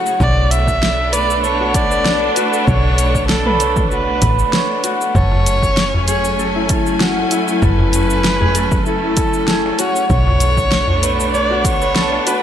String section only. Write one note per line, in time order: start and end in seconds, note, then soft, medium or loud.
0.00 0.17 C#3 medium
0.00 0.16 F#3 medium
0.00 0.16 A3 loud
0.00 0.18 F#4 medium
0.20 5.11 A3 medium
0.20 5.11 B3 medium
0.20 5.11 D4 medium
5.14 10.06 F#3 medium
5.14 10.06 A3 medium
5.14 10.06 C#4 medium
5.14 10.06 G#5 medium
10.10 12.43 A3 medium
10.10 12.43 B3 medium
10.10 12.43 D4 medium